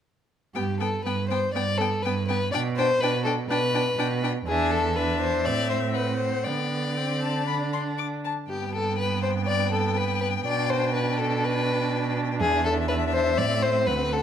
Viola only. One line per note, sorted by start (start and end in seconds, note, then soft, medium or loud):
0.55 0.63 B3 soft
0.80 0.88 B3 soft
1.06 1.14 B3 soft
1.31 1.39 B3 soft
1.55 1.63 B3 soft
1.80 1.88 B3 soft
2.05 2.13 B3 soft
2.29 2.37 B3 soft
2.53 2.61 D4 medium
2.78 2.86 D4 soft
3.03 3.11 D4 medium
3.25 3.33 D4 soft
3.50 3.58 D4 medium
3.74 3.82 D4 medium
3.98 4.06 D4 medium
4.22 4.30 D4 soft
4.48 4.93 D4 medium
4.97 5.47 D4 medium
5.45 6.47 C4 medium
6.46 6.99 B3 soft
6.98 7.48 C4 soft
7.49 8.28 D4 soft
8.51 10.44 B3 soft
10.48 13.34 D4 medium
13.39 14.23 C4 medium